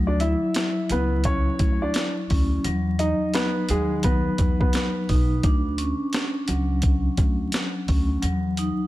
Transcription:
Already playing: upright bass D2, vibraphone F#3
0.07 upright piano D4 D5
0.20 vibraphone E4, upright piano E4 E5, closed hi-hat
0.54 snare, closed hi-hat
0.90 upright bass C#2, upright piano B3 B4, closed hi-hat
1.24 upright piano C#4 C#5, kick, closed hi-hat
1.59 upright bass D2, kick, closed hi-hat
1.82 upright piano D4 D5
1.94 snare, closed hi-hat
2.30 upright bass D2, vibraphone C#4, kick, open hi-hat
2.64 upright bass E2, vibraphone F#3, closed hi-hat
2.99 upright piano D#4 D#5, vibraphone D#4, closed hi-hat
3.34 upright piano B3 B4, snare, closed hi-hat
3.69 upright bass D#2, vibraphone F#3, upright piano G#3 G#4, closed hi-hat
4.03 vibraphone F#3, upright piano B3 B4, kick, closed hi-hat
4.38 upright bass E2, kick, closed hi-hat
4.60 upright piano B3 B4, kick
4.73 snare, closed hi-hat
5.09 upright bass B1, vibraphone D#4, kick, open hi-hat
5.43 upright bass D2, vibraphone D4, kick, closed hi-hat
5.78 vibraphone C#4, closed hi-hat
6.13 snare, closed hi-hat
6.48 upright bass C#2, vibraphone F#3, closed hi-hat
6.82 kick, closed hi-hat
7.17 upright bass D2, kick, closed hi-hat
7.52 snare, closed hi-hat
7.88 upright bass D2, vibraphone C#4, kick, open hi-hat
8.22 upright bass E2, vibraphone F#3, closed hi-hat
8.57 vibraphone D#4, closed hi-hat

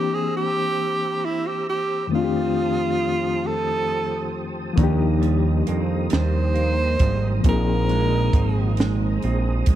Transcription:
Already playing: reed electric piano E3 A#3 C4 D4 G4, tenor saxophone G4, tonewheel organ G4 C5 A#5 E6
0.14 tenor saxophone G#4
0.37 tenor saxophone G4
1.25 tenor saxophone E4
1.47 tenor saxophone G4
1.69 tenor saxophone G4
2.07 reed electric piano F2 D#3, tonewheel organ F3 C5 A5 D#6
2.11 reed electric piano A3 C4 D4, tenor saxophone F4
2.17 reed electric piano F4
2.24 reed electric piano G4
3.47 tenor saxophone A4
4.73 clean electric guitar D#3, reed electric piano F3 A#3
4.77 analog synth bass D#2, reed electric piano D4 D#4, tonewheel organ A#5, kick, closed hi-hat
4.84 reed electric piano G4
5.22 clean electric guitar G3, closed hi-hat
5.67 analog synth bass F2, clean electric guitar A#3, closed hi-hat
6.10 analog synth bass D#2, clean electric guitar G3, snare, closed hi-hat
6.14 tenor saxophone C5
6.55 clean electric guitar A#3, closed hi-hat
6.99 analog synth bass G#1, clean electric guitar G3, kick, closed hi-hat
7.40 reed electric piano F3 A#3, tonewheel organ G#4, closed hi-hat
7.44 analog synth bass A#1, clean electric guitar A#2, reed electric piano C4 D#4, tonewheel organ C5, kick
7.49 reed electric piano G#4, tenor saxophone A#4
7.89 clean electric guitar G#3, closed hi-hat
8.33 analog synth bass G#1, clean electric guitar C4, kick, closed hi-hat
8.77 clean electric guitar G#3, snare, closed hi-hat
9.22 analog synth bass A#1, clean electric guitar C4, closed hi-hat
9.66 analog synth bass A#1, clean electric guitar G#3, kick, closed hi-hat

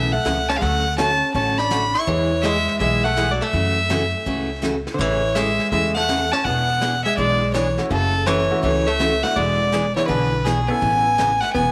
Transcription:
Already playing: upright bass B1, steel-string acoustic guitar C#3 E3 B3 C#4, hollow-body jazz guitar A3, fiddle E5
0.12 hollow-body jazz guitar A3, fiddle F#5
0.25 upright bass C#2, steel-string acoustic guitar C#3 E3 B3 C#4, snare, hi-hat pedal
0.48 hollow-body jazz guitar C#4, fiddle A5, snare
0.56 hollow-body jazz guitar G#3, fiddle F5
0.61 upright bass D2, steel-string acoustic guitar D3 F#3 A3 C#4 F#4, hollow-body jazz guitar A3, fiddle F#5, brush sweep, kick
0.98 steel-string acoustic guitar D3 F#3 A3 C#4 F#4, hollow-body jazz guitar C#4, fiddle A5, snare, hi-hat pedal
1.34 upright bass A1, steel-string acoustic guitar D3 F#3 A3 C#4 F#4, hollow-body jazz guitar C#4, fiddle A5, brush sweep, kick
1.58 hollow-body jazz guitar D4, fiddle B5, snare
1.71 steel-string acoustic guitar D3 F#3 A3 C#4 F#4, snare, hi-hat pedal
1.94 hollow-body jazz guitar E4, fiddle C#6
2.07 upright bass E2, steel-string acoustic guitar E3 G#3 B3 E4 G#4, hollow-body jazz guitar E3, fiddle C#5, brush sweep, kick
2.42 steel-string acoustic guitar E3 G#3 B3 E4 G#4, hollow-body jazz guitar G#3, fiddle E5, snare, hi-hat pedal
2.68 snare
2.79 upright bass B1, steel-string acoustic guitar E3 G#3 B3 E4 G#4, hollow-body jazz guitar G#3, fiddle E5, brush sweep, kick
3.04 hollow-body jazz guitar A3, fiddle F#5
3.16 steel-string acoustic guitar E3 G#3 B3 E4 G#4, snare, hi-hat pedal
3.31 hollow-body jazz guitar F#3, fiddle D5
3.41 hollow-body jazz guitar A3, fiddle E5, snare
3.53 upright bass F#2, steel-string acoustic guitar C#3 E3 A3 C#4 F#4, brush sweep, kick
3.89 steel-string acoustic guitar C#3 E3 A3 C#4 F#4, snare, hi-hat pedal
4.26 upright bass C#2, steel-string acoustic guitar C#3 E3 A3 C#4 F#4, brush sweep, kick
4.62 steel-string acoustic guitar C#3 E3 A3 C#4 F#4, snare, hi-hat pedal
4.87 snare
4.94 hollow-body jazz guitar D3, fiddle C5
4.98 upright bass A1, steel-string acoustic guitar C#3 E3 A3 C#4 G#4, hollow-body jazz guitar E3, fiddle C#5, brush sweep, kick
5.35 steel-string acoustic guitar C#3 E3 A3 C#4 G#4, hollow-body jazz guitar G#3, fiddle E5, snare, hi-hat pedal
5.59 snare
5.71 upright bass E2, steel-string acoustic guitar C#3 E3 A3 C#4 G#4, hollow-body jazz guitar G#3, fiddle E5, brush sweep, kick
5.94 hollow-body jazz guitar A3, fiddle F#5, snare
6.09 steel-string acoustic guitar C#3 E3 A3 C#4 G#4, snare, hi-hat pedal
6.32 hollow-body jazz guitar C#4, fiddle A5, snare
6.44 upright bass E1, steel-string acoustic guitar E3 B3 D4 G#4, hollow-body jazz guitar B3, fiddle F#5, brush sweep, kick
6.81 steel-string acoustic guitar E3 B3 D4 G#4, snare, hi-hat pedal
7.04 hollow-body jazz guitar G#3, fiddle E5
7.17 upright bass B1, steel-string acoustic guitar E3 B3 D4 G#4, hollow-body jazz guitar G#3, fiddle D5, brush sweep, kick
7.53 steel-string acoustic guitar E3 B3 D4 G#4, hollow-body jazz guitar E3, fiddle C#5, snare, hi-hat pedal
7.78 upright piano A3 C#4 E4 F#4, snare
7.90 upright bass F#1, hollow-body jazz guitar C#3, steel-string acoustic guitar C#3 E3 A3 C#4 F#4, fiddle A4, brush sweep, kick
8.26 steel-string acoustic guitar C#3 E3 A3 C#4 F#4, hollow-body jazz guitar E3, fiddle C#5, snare, hi-hat pedal
8.51 upright piano A3 C#4 E4 F#4
8.63 upright bass C#2, steel-string acoustic guitar C#3 E3 A3 C#4 F#4, hollow-body jazz guitar E3, fiddle C#5, brush sweep, kick
8.87 hollow-body jazz guitar A3, fiddle E5
8.99 steel-string acoustic guitar C#3 E3 A3 C#4 F#4, snare, hi-hat pedal
9.23 hollow-body jazz guitar A3, upright piano B3 D4 E4 F#4, fiddle F#5, snare
9.36 upright bass E1, steel-string acoustic guitar E3 B3 D4 G#4, hollow-body jazz guitar G#3, fiddle D5, brush sweep, kick
9.72 steel-string acoustic guitar E3 B3 D4 G#4, snare, hi-hat pedal
9.96 hollow-body jazz guitar E3, upright piano B3 D4 E4 G#4, fiddle C#5, snare
10.07 upright bass B1, hollow-body jazz guitar D3, steel-string acoustic guitar E3 B3 D4 G#4, fiddle B4, brush sweep, kick
10.44 hollow-body jazz guitar B2, steel-string acoustic guitar E3 B3 D4 G#4, fiddle G#4, snare, hi-hat pedal
10.67 hollow-body jazz guitar B3, upright piano B3 C#4 E4 A4, fiddle G#5
10.81 upright bass A1, steel-string acoustic guitar C#3 E3 B3 C#4, brush sweep, kick
11.18 steel-string acoustic guitar C#3 E3 B3 C#4, snare, hi-hat pedal
11.40 hollow-body jazz guitar A3, fiddle F#5, snare
11.53 upright bass E1, steel-string acoustic guitar C#3 E3 B3 C#4, hollow-body jazz guitar B3, fiddle G#5, brush sweep, kick

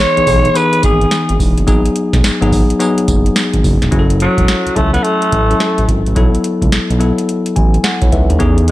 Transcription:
Already playing: tine electric piano E3 B3 D#4 G#4, alto saxophone C#5
0.17 analog synth bass B1, tine electric piano E3 B3 D#4 G#4, closed hi-hat
0.27 analog synth bass B1, kick, open hi-hat, tambourine
0.45 closed hi-hat
0.54 tine electric piano E3 B3 D#4 G#4, alto saxophone B4, closed hi-hat, tambourine
0.73 closed hi-hat
0.83 analog synth bass G#1, alto saxophone G#4, kick, closed hi-hat, tambourine
1.01 closed hi-hat
1.11 snare, closed hi-hat, tambourine
1.29 analog synth bass G#1, closed hi-hat
1.40 analog synth bass E1, kick, open hi-hat, tambourine
1.58 analog synth bass F#1, closed hi-hat
1.67 analog synth bass G#1, tine electric piano F#3 B3 D#4 G#4, kick, closed hi-hat, tambourine
1.86 closed hi-hat
1.96 closed hi-hat
2.13 analog synth bass B1, kick, snare, closed hi-hat
2.24 analog synth bass G#1, snare, closed hi-hat, tambourine
2.41 analog synth bass G#1, tine electric piano F#3 B3 D#4 G#4, closed hi-hat
2.52 kick, open hi-hat, tambourine
2.70 closed hi-hat
2.80 tine electric piano F#3 B3 D#4 G#4, closed hi-hat, tambourine
2.98 closed hi-hat
3.08 analog synth bass F#1, kick, closed hi-hat, tambourine
3.26 closed hi-hat
3.36 snare, closed hi-hat, tambourine
3.54 analog synth bass G#1, kick, closed hi-hat
3.64 analog synth bass F#1, kick, open hi-hat, tambourine
3.82 analog synth bass E1, snare, closed hi-hat
3.91 analog synth bass F#1, tine electric piano F#3 C#4 E4 G#4, kick, closed hi-hat
3.99 tine electric piano A4
4.10 closed hi-hat
4.20 alto saxophone F#3, closed hi-hat
4.38 analog synth bass E1, kick, closed hi-hat
4.48 snare, closed hi-hat
4.66 analog synth bass C#2, closed hi-hat
4.76 analog synth bass C#2, tine electric piano F#3 C#4 E4 A4, alto saxophone A3, kick, closed hi-hat
4.93 alto saxophone B3, closed hi-hat
5.03 alto saxophone A3, closed hi-hat
5.22 closed hi-hat
5.32 analog synth bass A1, kick, closed hi-hat
5.50 tine electric piano F#3 C#4 E4 A4, closed hi-hat
5.60 snare, closed hi-hat
5.78 analog synth bass A1, closed hi-hat
5.88 analog synth bass G#1, kick, closed hi-hat
6.06 analog synth bass A1, closed hi-hat
6.16 analog synth bass B1, tine electric piano F#3 B3 E4 A4, kick, closed hi-hat
6.35 closed hi-hat
6.44 closed hi-hat
6.62 analog synth bass C#2, kick, closed hi-hat
6.72 analog synth bass B1, snare, closed hi-hat
6.90 analog synth bass B1, closed hi-hat
6.99 tine electric piano F#3 B3 E4 A4, closed hi-hat
7.18 closed hi-hat
7.29 closed hi-hat
7.46 closed hi-hat
7.56 analog synth bass A1, tine electric piano G#5, kick, closed hi-hat
7.74 closed hi-hat
7.84 tine electric piano F#5, snare, closed hi-hat
8.02 analog synth bass B1, tine electric piano E4 C#5, kick, closed hi-hat
8.12 analog synth bass C#2, tine electric piano D#4 B4 E5, kick, closed hi-hat
8.30 analog synth bass D#2, tine electric piano C#4 A4, closed hi-hat
8.39 analog synth bass E2, tine electric piano E3 B3 D#4 G#4, kick, closed hi-hat
8.58 closed hi-hat
8.68 closed hi-hat

